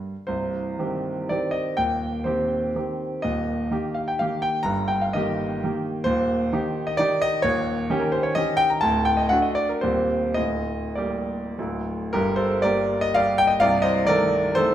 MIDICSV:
0, 0, Header, 1, 2, 480
1, 0, Start_track
1, 0, Key_signature, -3, "minor"
1, 0, Tempo, 505476
1, 270, Time_signature, 3, 2, 24, 8
1, 1229, Tempo, 485830
1, 4109, Tempo, 472441
1, 5549, Tempo, 455927
1, 6010, Key_signature, -2, "minor"
1, 8909, Tempo, 516796
1, 10349, Tempo, 604230
1, 11309, Tempo, 549954
1, 11789, Tempo, 517688
1, 12749, Tempo, 465839
1, 14380, End_track
2, 0, Start_track
2, 0, Title_t, "Grand piano"
2, 0, Program_c, 0, 0
2, 0, Note_on_c, 0, 43, 50
2, 124, Note_off_c, 0, 43, 0
2, 254, Note_on_c, 0, 72, 77
2, 265, Note_on_c, 0, 24, 54
2, 266, Note_on_c, 0, 36, 59
2, 481, Control_c, 0, 64, 127
2, 732, Note_off_c, 0, 24, 0
2, 732, Note_off_c, 0, 36, 0
2, 750, Note_on_c, 0, 51, 49
2, 752, Note_on_c, 0, 60, 47
2, 757, Note_on_c, 0, 67, 56
2, 1192, Note_off_c, 0, 51, 0
2, 1194, Note_off_c, 0, 60, 0
2, 1196, Note_off_c, 0, 67, 0
2, 1222, Note_off_c, 0, 72, 0
2, 1228, Note_on_c, 0, 74, 80
2, 1239, Note_on_c, 0, 51, 46
2, 1241, Control_c, 0, 64, 0
2, 1243, Note_on_c, 0, 67, 49
2, 1244, Note_on_c, 0, 60, 44
2, 1443, Note_on_c, 0, 75, 83
2, 1465, Note_off_c, 0, 74, 0
2, 1661, Note_off_c, 0, 51, 0
2, 1663, Note_off_c, 0, 67, 0
2, 1664, Note_off_c, 0, 60, 0
2, 1684, Note_off_c, 0, 75, 0
2, 1696, Note_on_c, 0, 79, 96
2, 1705, Note_on_c, 0, 27, 54
2, 1708, Note_on_c, 0, 39, 64
2, 1870, Control_c, 0, 64, 127
2, 2162, Note_off_c, 0, 27, 0
2, 2163, Note_off_c, 0, 39, 0
2, 2164, Note_on_c, 0, 72, 69
2, 2172, Note_off_c, 0, 79, 0
2, 2176, Note_on_c, 0, 51, 49
2, 2182, Note_on_c, 0, 60, 54
2, 2185, Note_on_c, 0, 67, 59
2, 2639, Note_off_c, 0, 51, 0
2, 2642, Note_off_c, 0, 60, 0
2, 2644, Note_off_c, 0, 67, 0
2, 2674, Note_on_c, 0, 51, 48
2, 2677, Note_on_c, 0, 60, 48
2, 2678, Note_on_c, 0, 67, 51
2, 2685, Control_c, 0, 64, 0
2, 2913, Note_off_c, 0, 72, 0
2, 3106, Note_off_c, 0, 51, 0
2, 3108, Note_off_c, 0, 60, 0
2, 3108, Note_off_c, 0, 67, 0
2, 3135, Note_on_c, 0, 75, 84
2, 3150, Note_on_c, 0, 27, 63
2, 3151, Note_on_c, 0, 39, 65
2, 3313, Control_c, 0, 64, 127
2, 3608, Note_off_c, 0, 27, 0
2, 3609, Note_off_c, 0, 39, 0
2, 3614, Note_on_c, 0, 51, 54
2, 3620, Note_on_c, 0, 58, 55
2, 3626, Note_on_c, 0, 67, 64
2, 3633, Control_c, 0, 64, 0
2, 3848, Note_on_c, 0, 77, 69
2, 3864, Note_off_c, 0, 75, 0
2, 3978, Note_on_c, 0, 79, 72
2, 3980, Note_off_c, 0, 77, 0
2, 4065, Note_off_c, 0, 51, 0
2, 4068, Note_off_c, 0, 58, 0
2, 4071, Note_off_c, 0, 67, 0
2, 4092, Note_on_c, 0, 77, 88
2, 4102, Note_off_c, 0, 79, 0
2, 4108, Note_on_c, 0, 51, 54
2, 4110, Note_on_c, 0, 58, 54
2, 4118, Note_on_c, 0, 67, 59
2, 4323, Note_on_c, 0, 79, 91
2, 4335, Note_off_c, 0, 77, 0
2, 4534, Note_off_c, 0, 51, 0
2, 4534, Note_on_c, 0, 82, 104
2, 4536, Note_off_c, 0, 58, 0
2, 4539, Note_off_c, 0, 67, 0
2, 4551, Note_on_c, 0, 43, 73
2, 4553, Note_on_c, 0, 31, 66
2, 4565, Note_off_c, 0, 79, 0
2, 4787, Note_on_c, 0, 79, 78
2, 4790, Control_c, 0, 64, 127
2, 4792, Note_off_c, 0, 82, 0
2, 4924, Note_off_c, 0, 79, 0
2, 4927, Note_on_c, 0, 77, 71
2, 5039, Note_off_c, 0, 43, 0
2, 5040, Note_off_c, 0, 31, 0
2, 5048, Note_on_c, 0, 75, 88
2, 5058, Note_on_c, 0, 51, 64
2, 5060, Note_off_c, 0, 77, 0
2, 5066, Note_on_c, 0, 58, 64
2, 5075, Note_on_c, 0, 67, 69
2, 5504, Note_off_c, 0, 51, 0
2, 5508, Note_off_c, 0, 58, 0
2, 5513, Note_off_c, 0, 67, 0
2, 5557, Control_c, 0, 64, 0
2, 5562, Note_on_c, 0, 51, 60
2, 5565, Note_on_c, 0, 58, 61
2, 5570, Note_on_c, 0, 67, 61
2, 5771, Note_off_c, 0, 75, 0
2, 5974, Note_off_c, 0, 51, 0
2, 5975, Note_off_c, 0, 58, 0
2, 5978, Note_off_c, 0, 67, 0
2, 5984, Note_on_c, 0, 72, 106
2, 5999, Note_on_c, 0, 27, 72
2, 6005, Note_on_c, 0, 39, 79
2, 6186, Control_c, 0, 64, 127
2, 6471, Note_off_c, 0, 27, 0
2, 6474, Note_off_c, 0, 39, 0
2, 6497, Note_on_c, 0, 51, 68
2, 6499, Note_on_c, 0, 63, 68
2, 6503, Control_c, 0, 64, 0
2, 6505, Note_on_c, 0, 67, 76
2, 6855, Note_on_c, 0, 75, 85
2, 6856, Note_off_c, 0, 72, 0
2, 6950, Note_off_c, 0, 51, 0
2, 6951, Note_off_c, 0, 63, 0
2, 6955, Note_off_c, 0, 67, 0
2, 6966, Note_on_c, 0, 74, 109
2, 6983, Note_off_c, 0, 75, 0
2, 6987, Note_on_c, 0, 63, 64
2, 6992, Note_on_c, 0, 51, 64
2, 7000, Note_on_c, 0, 67, 68
2, 7213, Note_off_c, 0, 74, 0
2, 7222, Note_on_c, 0, 75, 116
2, 7409, Note_off_c, 0, 63, 0
2, 7411, Note_off_c, 0, 51, 0
2, 7415, Note_off_c, 0, 67, 0
2, 7441, Note_on_c, 0, 73, 114
2, 7451, Note_off_c, 0, 75, 0
2, 7457, Note_on_c, 0, 39, 81
2, 7463, Note_on_c, 0, 27, 75
2, 7647, Control_c, 0, 64, 127
2, 7925, Note_off_c, 0, 39, 0
2, 7928, Note_off_c, 0, 27, 0
2, 7941, Note_on_c, 0, 51, 68
2, 7946, Control_c, 0, 64, 0
2, 7950, Note_on_c, 0, 61, 74
2, 7950, Note_on_c, 0, 67, 77
2, 8043, Note_on_c, 0, 70, 74
2, 8058, Note_off_c, 0, 73, 0
2, 8173, Note_on_c, 0, 72, 85
2, 8176, Note_off_c, 0, 70, 0
2, 8291, Note_on_c, 0, 73, 82
2, 8300, Note_off_c, 0, 72, 0
2, 8385, Note_off_c, 0, 51, 0
2, 8390, Note_off_c, 0, 61, 0
2, 8390, Note_off_c, 0, 67, 0
2, 8416, Note_on_c, 0, 75, 109
2, 8418, Note_off_c, 0, 73, 0
2, 8427, Note_on_c, 0, 51, 59
2, 8438, Note_on_c, 0, 67, 68
2, 8442, Note_on_c, 0, 61, 61
2, 8645, Note_on_c, 0, 79, 117
2, 8661, Note_off_c, 0, 75, 0
2, 8776, Note_off_c, 0, 79, 0
2, 8784, Note_on_c, 0, 82, 84
2, 8866, Note_off_c, 0, 51, 0
2, 8871, Note_off_c, 0, 67, 0
2, 8874, Note_off_c, 0, 61, 0
2, 8898, Note_on_c, 0, 81, 113
2, 8906, Note_off_c, 0, 82, 0
2, 8913, Note_on_c, 0, 26, 74
2, 8915, Note_on_c, 0, 38, 83
2, 9108, Control_c, 0, 64, 127
2, 9125, Note_on_c, 0, 79, 97
2, 9126, Note_off_c, 0, 81, 0
2, 9235, Note_on_c, 0, 75, 78
2, 9244, Note_off_c, 0, 79, 0
2, 9348, Note_on_c, 0, 78, 102
2, 9355, Note_off_c, 0, 26, 0
2, 9356, Note_off_c, 0, 38, 0
2, 9360, Note_off_c, 0, 75, 0
2, 9364, Note_on_c, 0, 57, 65
2, 9369, Note_on_c, 0, 62, 64
2, 9372, Note_on_c, 0, 66, 67
2, 9376, Control_c, 0, 64, 0
2, 9470, Note_on_c, 0, 75, 70
2, 9478, Note_off_c, 0, 78, 0
2, 9588, Note_on_c, 0, 74, 96
2, 9599, Note_off_c, 0, 75, 0
2, 9719, Note_off_c, 0, 74, 0
2, 9720, Note_on_c, 0, 70, 71
2, 9813, Note_off_c, 0, 57, 0
2, 9815, Note_off_c, 0, 62, 0
2, 9817, Note_off_c, 0, 66, 0
2, 9832, Note_on_c, 0, 72, 87
2, 9847, Note_off_c, 0, 70, 0
2, 9847, Note_on_c, 0, 27, 62
2, 9847, Note_on_c, 0, 39, 70
2, 9848, Note_on_c, 0, 55, 50
2, 9857, Note_on_c, 0, 60, 53
2, 9857, Note_on_c, 0, 67, 53
2, 10063, Control_c, 0, 64, 127
2, 10309, Note_off_c, 0, 55, 0
2, 10314, Note_off_c, 0, 60, 0
2, 10314, Note_off_c, 0, 67, 0
2, 10327, Note_on_c, 0, 75, 92
2, 10331, Note_off_c, 0, 27, 0
2, 10331, Note_off_c, 0, 39, 0
2, 10339, Note_off_c, 0, 72, 0
2, 10342, Note_on_c, 0, 26, 58
2, 10342, Note_on_c, 0, 38, 64
2, 10357, Control_c, 0, 64, 0
2, 10524, Control_c, 0, 64, 127
2, 10809, Note_off_c, 0, 26, 0
2, 10809, Note_off_c, 0, 38, 0
2, 10815, Note_on_c, 0, 74, 62
2, 10817, Note_off_c, 0, 75, 0
2, 10828, Note_on_c, 0, 55, 54
2, 10832, Note_on_c, 0, 58, 54
2, 10837, Note_on_c, 0, 67, 58
2, 11278, Note_off_c, 0, 55, 0
2, 11280, Note_off_c, 0, 58, 0
2, 11283, Note_off_c, 0, 67, 0
2, 11315, Note_on_c, 0, 54, 45
2, 11316, Note_on_c, 0, 38, 62
2, 11317, Note_on_c, 0, 26, 58
2, 11320, Control_c, 0, 64, 0
2, 11322, Note_on_c, 0, 57, 45
2, 11323, Note_on_c, 0, 69, 46
2, 11479, Control_c, 0, 64, 127
2, 11553, Note_off_c, 0, 74, 0
2, 11758, Note_off_c, 0, 54, 0
2, 11761, Note_off_c, 0, 57, 0
2, 11762, Note_off_c, 0, 69, 0
2, 11779, Note_off_c, 0, 26, 0
2, 11779, Note_off_c, 0, 38, 0
2, 11790, Note_on_c, 0, 70, 102
2, 11799, Note_on_c, 0, 67, 81
2, 11803, Control_c, 0, 64, 0
2, 11805, Note_on_c, 0, 31, 81
2, 11805, Note_on_c, 0, 43, 71
2, 12005, Control_c, 0, 64, 127
2, 12005, Note_on_c, 0, 72, 91
2, 12008, Note_off_c, 0, 67, 0
2, 12014, Note_on_c, 0, 69, 68
2, 12019, Note_off_c, 0, 70, 0
2, 12247, Note_on_c, 0, 74, 102
2, 12248, Note_off_c, 0, 69, 0
2, 12260, Note_on_c, 0, 55, 58
2, 12261, Note_off_c, 0, 72, 0
2, 12262, Note_on_c, 0, 70, 77
2, 12267, Note_on_c, 0, 58, 60
2, 12272, Note_on_c, 0, 67, 65
2, 12278, Control_c, 0, 64, 0
2, 12608, Note_off_c, 0, 70, 0
2, 12610, Note_on_c, 0, 75, 107
2, 12626, Note_off_c, 0, 74, 0
2, 12708, Note_off_c, 0, 55, 0
2, 12711, Note_off_c, 0, 58, 0
2, 12713, Note_off_c, 0, 67, 0
2, 12733, Note_on_c, 0, 77, 120
2, 12736, Note_off_c, 0, 75, 0
2, 12744, Note_on_c, 0, 74, 83
2, 12752, Note_on_c, 0, 55, 63
2, 12757, Note_on_c, 0, 58, 61
2, 12758, Note_on_c, 0, 67, 70
2, 12967, Note_off_c, 0, 74, 0
2, 12975, Note_on_c, 0, 79, 117
2, 12977, Note_off_c, 0, 77, 0
2, 13070, Note_on_c, 0, 75, 83
2, 13095, Note_off_c, 0, 79, 0
2, 13173, Note_off_c, 0, 55, 0
2, 13176, Note_off_c, 0, 58, 0
2, 13176, Note_off_c, 0, 67, 0
2, 13180, Note_off_c, 0, 31, 0
2, 13181, Note_off_c, 0, 43, 0
2, 13198, Note_off_c, 0, 75, 0
2, 13199, Note_on_c, 0, 77, 122
2, 13213, Note_on_c, 0, 74, 91
2, 13215, Note_on_c, 0, 36, 87
2, 13217, Note_on_c, 0, 24, 75
2, 13415, Control_c, 0, 64, 127
2, 13426, Note_on_c, 0, 75, 104
2, 13429, Note_off_c, 0, 74, 0
2, 13438, Note_off_c, 0, 77, 0
2, 13441, Note_on_c, 0, 72, 84
2, 13676, Note_off_c, 0, 72, 0
2, 13680, Note_on_c, 0, 74, 112
2, 13686, Note_off_c, 0, 75, 0
2, 13696, Note_on_c, 0, 51, 63
2, 13699, Note_on_c, 0, 70, 88
2, 13703, Note_on_c, 0, 57, 61
2, 13708, Note_on_c, 0, 69, 69
2, 13709, Control_c, 0, 64, 0
2, 14152, Note_off_c, 0, 51, 0
2, 14156, Note_off_c, 0, 57, 0
2, 14158, Note_off_c, 0, 69, 0
2, 14160, Note_off_c, 0, 70, 0
2, 14178, Note_on_c, 0, 72, 116
2, 14185, Note_off_c, 0, 74, 0
2, 14195, Note_on_c, 0, 69, 85
2, 14199, Note_on_c, 0, 51, 68
2, 14203, Note_on_c, 0, 57, 67
2, 14380, Note_off_c, 0, 24, 0
2, 14380, Note_off_c, 0, 36, 0
2, 14380, Note_off_c, 0, 51, 0
2, 14380, Note_off_c, 0, 57, 0
2, 14380, Note_off_c, 0, 69, 0
2, 14380, Note_off_c, 0, 72, 0
2, 14380, End_track
0, 0, End_of_file